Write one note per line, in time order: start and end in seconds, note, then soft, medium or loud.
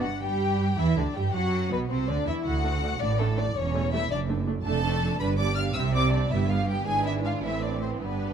0.02 0.22 G2 soft
0.02 0.10 F#4 medium
0.02 0.22 F#5 medium
0.21 0.74 G2 medium
0.21 0.74 G3 medium
0.21 0.77 G4 medium
0.21 0.74 G4 medium
0.21 0.78 G5 medium
0.78 0.97 E2 medium
0.78 0.97 E3 medium
0.78 0.97 E4 medium
0.78 0.97 E5 medium
0.97 1.05 D2 soft
0.97 1.04 D3 soft
0.97 1.04 D4 soft
0.97 1.16 D4 soft
0.97 1.16 D5 medium
1.15 1.34 G2 medium
1.15 1.34 G3 medium
1.15 1.23 G4 medium
1.15 1.35 G4 medium
1.15 1.34 G5 medium
1.33 1.71 F#2 medium
1.33 1.71 F#3 medium
1.33 1.71 F#4 medium
1.33 1.72 F#4 medium
1.33 1.70 F#5 medium
1.71 1.90 B1 medium
1.71 1.90 B2 medium
1.71 1.79 B3 medium
1.71 1.90 B3 medium
1.71 1.80 B4 medium
1.90 2.08 C2 medium
1.90 2.08 C3 soft
1.90 1.98 C4 soft
1.90 2.09 C4 medium
1.90 2.08 C5 medium
2.08 2.16 D2 medium
2.08 2.16 D3 medium
2.08 2.27 D4 medium
2.08 2.27 D5 medium
2.27 2.34 E2 medium
2.27 2.35 E3 medium
2.27 2.45 E4 medium
2.27 2.46 E4 medium
2.27 2.34 E5 medium
2.45 2.92 D2 medium
2.45 2.99 F#4 medium
2.45 3.00 F#5 medium
2.64 2.70 A3 soft
2.64 2.70 D4 soft
2.83 2.89 A3 soft
2.83 2.88 D4 soft
3.01 3.47 A1 medium
3.01 3.47 A2 medium
3.01 3.09 D4 medium
3.01 3.19 D5 medium
3.19 3.25 A3 soft
3.19 3.28 A3 medium
3.19 3.25 D4 medium
3.19 3.38 A4 medium
3.38 3.44 A3 medium
3.38 3.44 D4 soft
3.38 3.45 D4 medium
3.38 3.56 D5 medium
3.56 4.02 E1 medium
3.56 4.02 E2 medium
3.56 3.92 C#4 medium
3.56 3.92 C#5 medium
3.74 3.80 G3 soft
3.74 3.80 A3 medium
3.92 3.98 G3 soft
3.92 3.98 A3 medium
3.92 4.11 E4 medium
3.92 4.11 E5 medium
4.11 4.56 F#1 medium
4.11 4.57 F#2 medium
4.11 4.19 D4 medium
4.11 4.18 D5 medium
4.28 4.34 A3 medium
4.28 4.35 D4 medium
4.46 4.53 A3 medium
4.46 4.53 D4 medium
4.65 5.14 F1 medium
4.65 5.14 F2 medium
4.65 4.83 A3 medium
4.65 4.83 D4 medium
4.65 5.18 A4 medium
4.65 5.17 A5 medium
4.84 5.01 A3 medium
4.84 5.00 D4 soft
5.02 5.20 A3 medium
5.02 5.19 D4 soft
5.20 5.69 G1 medium
5.20 5.69 G2 medium
5.20 5.38 G3 medium
5.20 5.38 D4 medium
5.20 5.39 B4 medium
5.20 5.27 B5 medium
5.38 5.55 G3 soft
5.38 5.55 D4 soft
5.38 5.57 D5 medium
5.38 5.57 D6 medium
5.55 5.74 G3 soft
5.55 5.75 D4 soft
5.55 5.77 F5 medium
5.55 5.63 F6 medium
5.74 6.25 C2 medium
5.74 6.25 C3 medium
5.74 5.92 G3 medium
5.74 5.92 C4 medium
5.74 5.95 E5 medium
5.74 5.82 E6 medium
5.94 6.11 G3 soft
5.94 6.11 C4 soft
5.94 6.14 D5 medium
5.94 6.13 D6 medium
6.12 6.30 G3 soft
6.12 6.31 C4 soft
6.12 6.31 D4 medium
6.12 6.31 D5 medium
6.31 6.80 G1 medium
6.31 6.81 G2 medium
6.31 6.48 G3 medium
6.31 6.48 B3 medium
6.31 6.50 E4 medium
6.31 6.50 E5 medium
6.48 6.68 G3 soft
6.48 6.68 B3 soft
6.48 6.68 F4 medium
6.48 6.69 F5 medium
6.67 6.87 G3 soft
6.67 6.87 B3 soft
6.67 6.86 G4 medium
6.67 6.87 G5 medium
6.84 7.40 G#1 medium
6.84 7.40 G#2 medium
6.84 7.39 E3 medium
6.84 7.39 D4 medium
6.84 7.05 G#4 medium
6.84 7.05 G#5 medium
7.04 7.24 E4 medium
7.04 7.14 E5 medium
7.24 7.43 F4 medium
7.24 7.32 F5 medium
7.42 8.00 A1 soft
7.42 8.01 A2 soft
7.42 8.00 E3 soft
7.42 8.01 C4 soft
7.42 7.62 E4 medium
7.42 7.62 E5 medium
7.62 7.82 D4 soft
7.62 7.82 D5 medium
7.82 8.02 C4 soft
7.82 7.90 C5 medium
8.01 8.33 G1 soft
8.01 8.33 G2 soft
8.01 8.33 G3 soft
8.01 8.33 B3 medium
8.01 8.33 D4 soft
8.01 8.33 B4 medium